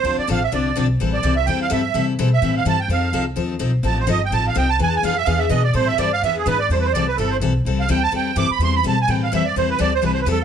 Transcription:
X:1
M:4/4
L:1/8
Q:"Swing" 1/4=252
K:Am
V:1 name="Accordion"
c d f e d3 z | z d2 e g f e2- | e z2 e2 f a g | f3 z4 z |
a c _e g a f g a | (3^g a g f e f e ^d =d | c e d f e ^G B d | (3c B c d B A c z2 |
z f g a g2 d' b | c' b a ^g =g f e d | c B d c (3B c B A z |]
V:2 name="Steel-string acoustic guitar"
[D,F,CDA] z [D,F,CDA] z [D,F,CDA] z [D,F,CDA] z | [E,G,CEA] z [E,G,CEA] z [E,G,CEA] z [E,G,CEA] z | [E,G,CEA] z [E,G,CEA] z [E,G,CEA] z [E,G,CEA] z | [F,C_EA] z [F,CEA] z [F,CEA] z [F,CEA] z |
[F,C_EA] z [F,CEA] z [F,CEA] z [F,CEA] z | [E,B,D^G] z [E,B,DG] z [E,B,DG] z [E,B,DG] z | [E,G,CEA] z [E,G,CEA] z [E,B,D^G] z [E,B,DG] z | [E,G,CEA] z [E,G,CEA] z [E,G,CEA] z [E,G,CEA] z |
[E,G,CEA] z [E,G,CEA] z [E,G,CEA] z [E,G,CEA] z | [E,G,CEA] z [E,G,CEA] z [E,G,CEA] z [E,G,CEA] z | [E,G,CEA] z [E,G,CEA] z [E,G,CEA] z [E,G,CEA] z |]
V:3 name="Upright bass" clef=bass
D,, z A,,,2 C,,2 B,,,2 | A,,,2 C,,2 E,,2 G,,2 | C,2 B,,2 A,,2 G,,2 | F,,2 C,,2 _E,,2 B,,,2 |
A,,,2 G,,,2 A,,,2 C,,2 | E,,2 F,,2 E,,2 B,,2 | A,,2 G,,2 E,,2 ^G,,2 | E,,2 C,,2 G,,,2 B,,,2 |
C,,2 D,,2 E,,2 G,, z | E,,2 B,,2 A,,2 F,,2 | E,,2 D,,2 C,,2 E,,2 |]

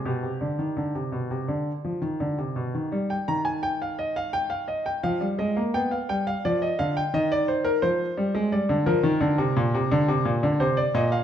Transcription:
X:1
M:4/4
L:1/16
Q:1/4=86
K:Gphr
V:1 name="Grand piano"
G12- G2 z2 | z g b a g f e f g f e g f2 e2 | g f g f d e f g e d c B c4 | d2 B8- B2 c d e f |]
V:2 name="Grand piano" clef=bass
=B,, C, D, E, D, C, B,, C, D,2 F, E, D, C, B,, E, | G,2 E,8- E,2 F, G, A, B, | =B,2 G,2 F,2 D,2 E,4 F,2 G, A, | G, D, F, E, D, C, B,, C, D, C, B,, D, C,2 B,,2 |]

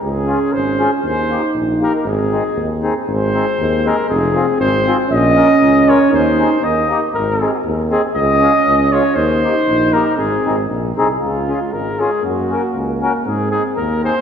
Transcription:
X:1
M:2/4
L:1/16
Q:"Swing" 1/4=118
K:Ab
V:1 name="Flugelhorn"
A4 c3 z | c4 z2 B B | A6 z2 | c6 B2 |
A4 c3 z | e6 d2 | c4 e3 z | B4 z2 A2 |
e6 d2 | c6 B2 | A4 z4 | [K:Db] F4 B2 A2 |
G6 z2 | A2 A2 B2 c2 |]
V:2 name="Accordion"
z2 [DFA]2 z2 [DFA]2 | z2 [B,EG]2 z2 [B,EG]2 | z2 [CEA]2 z2 [CEA]2 | z2 [CEA]2 z2 [CEA]2 |
z2 [CFA]2 z2 [CFA]2 | z2 [DFB]2 z2 [DFB]2 | z2 [CEA]2 z2 [B,EG]2 | z2 [CEA]2 z2 [CEA]2 |
z2 [DFA]2 z2 [DFA]2 | z2 [B,EG]2 z2 [B,EG]2 | z2 [CEA]2 z2 [CEA]2 | [K:Db] z2 [DFA]2 z2 [DFA]2 |
z2 [DGB]2 z2 [DGB]2 | z2 [CEA]2 z2 [CEA]2 |]
V:3 name="Euphonium"
D8 | E8 | C6 z2 | A,8 |
C8 | D8 | E4 B,4 | C6 z2 |
D8 | E8 | C6 z2 | [K:Db] A,8 |
B,8 | C4 B,4 |]
V:4 name="Tuba" clef=bass
D,,4 A,,,4 | E,,4 B,,,4 | A,,,4 E,,4 | A,,,4 E,,4 |
F,,,4 A,,,4 | B,,,4 D,,4 | E,,4 E,,4 | A,,,4 E,,4 |
D,,4 D,,4 | E,,4 B,,,4 | A,,,2 A,,,2 B,,,2 C,,2 | [K:Db] D,,4 A,,,4 |
G,,4 D,,4 | A,,4 E,,4 |]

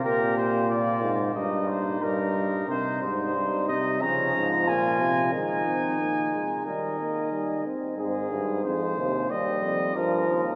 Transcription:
X:1
M:4/4
L:1/8
Q:1/4=91
K:Eb
V:1 name="Trumpet"
B c d z e c B2 | [K:Ab] c c2 e b2 a2 | a4 e3 z | A2 c2 e2 B2 |]
V:2 name="Flugelhorn"
G2 F2 E4 | [K:Ab] E2 E2 D2 F2 | E4 B3 z | z8 |]
V:3 name="Trombone" clef=bass
z8 | [K:Ab] G,4 F,4 | A, C B, A, G, B, G, C | C A,,2 C, G,2 F,2 |]
V:4 name="Euphonium" clef=bass
B,,3 A,, G,,2 G,,2 | [K:Ab] C, A,, G,, C, D, A,, B,, C, | E,4 E,3 z | A,, G,, F,, E,, E,, F,, G,, E,, |]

